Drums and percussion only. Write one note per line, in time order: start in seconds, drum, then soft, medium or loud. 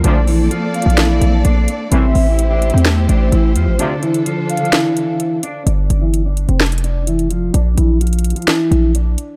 0.04 closed hi-hat medium
0.27 open hi-hat medium
0.51 closed hi-hat medium
0.74 closed hi-hat medium
0.82 closed hi-hat medium
0.90 closed hi-hat medium
0.98 snare loud
0.98 closed hi-hat medium
1.22 closed hi-hat medium
1.45 closed hi-hat medium
1.68 closed hi-hat medium
1.92 closed hi-hat medium
2.15 open hi-hat medium
2.39 closed hi-hat medium
2.62 closed hi-hat medium
2.70 closed hi-hat medium
2.78 closed hi-hat medium
2.85 snare loud
2.85 closed hi-hat medium
3.09 closed hi-hat medium
3.32 closed hi-hat medium
3.56 closed hi-hat medium
3.79 closed hi-hat medium
4.03 closed hi-hat soft
4.03 open hi-hat medium
4.14 closed hi-hat medium
4.26 closed hi-hat medium
4.50 closed hi-hat medium
4.57 closed hi-hat medium
4.65 closed hi-hat soft
4.73 snare loud
4.73 closed hi-hat medium
4.97 closed hi-hat medium
5.20 closed hi-hat medium
5.43 closed hi-hat medium
5.67 closed hi-hat medium
5.90 closed hi-hat medium
6.14 closed hi-hat medium
6.37 closed hi-hat medium
6.49 closed hi-hat soft
6.60 snare loud
6.60 closed hi-hat soft
6.66 closed hi-hat soft
6.72 closed hi-hat medium
6.78 closed hi-hat medium
6.84 closed hi-hat medium
7.07 closed hi-hat medium
7.19 closed hi-hat soft
7.31 closed hi-hat medium
7.54 closed hi-hat medium
7.78 closed hi-hat medium
8.01 closed hi-hat medium
8.07 closed hi-hat medium
8.13 closed hi-hat medium
8.19 closed hi-hat medium
8.24 closed hi-hat medium
8.30 closed hi-hat medium
8.36 closed hi-hat soft
8.42 closed hi-hat soft
8.48 snare loud
8.48 closed hi-hat medium
8.72 closed hi-hat medium
8.95 closed hi-hat medium
9.18 closed hi-hat medium